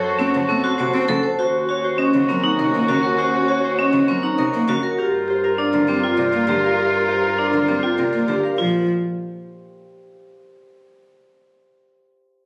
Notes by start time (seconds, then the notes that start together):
Already playing: F#2 F#4 A4 C#5 F#5 A5 C6
0.03 C5
0.19 C4 C#4 F#5
0.35 C#3
0.49 A3 C4 A4
0.64 F#4 C6
0.78 C3 C5 F#5
0.94 C4
1.08 C#3 A4
1.23 C5 A5
1.39 D#2 C#4 F#4 C5
1.69 F#4 C#5
1.84 C5
1.98 C#4 D#5
2.14 C#3
2.28 F#3 C4 A#4
2.44 D#4 A#5
2.58 C3 A#4 D#5
2.74 A#3
2.88 C#3 F#4 A#4
3.03 A#4 F#5
3.18 F#4 C5
3.48 F#4 C#5
3.64 C5
3.78 C#4 D#5
3.93 C#3
4.08 F#3 C4 A#4
4.23 D#4 A#5
4.38 C3 A#4 D#5
4.54 A#3
4.68 C#3 F#4 A#4
4.83 A#4 F#5
4.98 G2 F4 G4 A#4
5.28 G4 C5
5.44 A#4
5.58 D4 D5
5.73 D3
5.88 G3 C4 G4
6.04 F4 G5
6.17 C3 A#4 D5
6.33 A#3
6.47 D3 G4
6.64 A#4 F5
6.78 G4 A#4
7.08 G4 C5
7.23 A#4
7.38 D4 D5
7.53 D3
7.67 G3 C4 G4
7.83 F4 G5
7.98 C3 A#4 D5
8.13 A#3
8.28 D3 G4
8.43 A#4 F5
8.58 A#1 F3 F4 C5